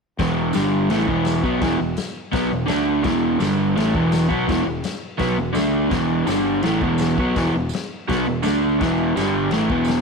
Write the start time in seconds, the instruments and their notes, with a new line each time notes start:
0.19 fingered electric bass E1, overdriven electric guitar E2 B2 E3, kick, snare, crash
0.53 fingered electric bass G1, overdriven electric guitar G2 D3 G3, snare, tambourine, crash
0.90 fingered electric bass A1, overdriven electric guitar A2 E3 A3, snare, crash
1.07 fingered electric bass E1, overdriven electric guitar E2 B2 E3, kick
1.25 snare, tambourine, crash
1.43 fingered electric bass B1, overdriven electric guitar B2 F#3 B3, kick
1.60 fingered electric bass E1, overdriven electric guitar E2 B2 E3, kick, snare, crash
1.78 fingered electric bass E1, overdriven electric guitar E2 B2
1.97 snare, tambourine, crash
2.32 fingered electric bass B1, overdriven electric guitar B2 F#3 B3, kick, snare, crash
2.50 fingered electric bass E1, overdriven electric guitar E2 B2
2.66 overdriven electric guitar D3 A3 D4, snare, tambourine, crash
2.70 fingered electric bass D2
3.02 fingered electric bass E1, overdriven electric guitar E2 B2 E3, kick, snare, crash
3.39 fingered electric bass G1, overdriven electric guitar G2 D3 G3, snare, tambourine, crash
3.76 fingered electric bass A1, overdriven electric guitar A2 E3 A3, snare, crash
3.95 fingered electric bass E1, overdriven electric guitar E2 B2 E3, kick
4.12 snare, tambourine, crash
4.29 fingered electric bass B1, overdriven electric guitar B2 F#3 B3, kick
4.48 fingered electric bass E1, overdriven electric guitar E2 B2 E3, kick, snare, crash
4.64 fingered electric bass E1, overdriven electric guitar E2 B2
4.84 snare, tambourine, crash
5.18 fingered electric bass B1, overdriven electric guitar B2 F#3 B3, kick, snare, crash
5.38 fingered electric bass E1, overdriven electric guitar E2 B2
5.53 fingered electric bass D2, overdriven electric guitar D3 A3 D4, snare, tambourine, crash
5.90 fingered electric bass E1, overdriven electric guitar E2 B2 E3, kick, snare, crash
6.26 fingered electric bass G1, overdriven electric guitar G2 D3 G3, snare, tambourine, crash
6.63 fingered electric bass A1, overdriven electric guitar A2 E3 A3, snare, crash
6.81 fingered electric bass E1, overdriven electric guitar E2 B2 E3, kick
6.98 snare, tambourine, crash
7.17 fingered electric bass B1, overdriven electric guitar B2 F#3 B3, kick
7.36 fingered electric bass E1, overdriven electric guitar E2 B2 E3, kick, snare, crash
7.55 fingered electric bass E1, overdriven electric guitar E2 B2
7.69 tambourine
7.73 snare, crash
8.08 fingered electric bass B1, overdriven electric guitar B2 F#3 B3, kick, snare, crash
8.27 fingered electric bass E1, overdriven electric guitar E2 B2
8.43 fingered electric bass D2, overdriven electric guitar D3 A3 D4, snare, tambourine, crash
8.79 fingered electric bass E1, overdriven electric guitar E2 B2 E3, kick, snare, crash
9.16 fingered electric bass G1, overdriven electric guitar G2 D3 G3, snare, tambourine, crash
9.51 fingered electric bass A1, overdriven electric guitar A2 E3 A3, snare, crash
9.69 fingered electric bass E1, overdriven electric guitar E2 B2 E3, kick
9.85 tambourine, crash
9.89 snare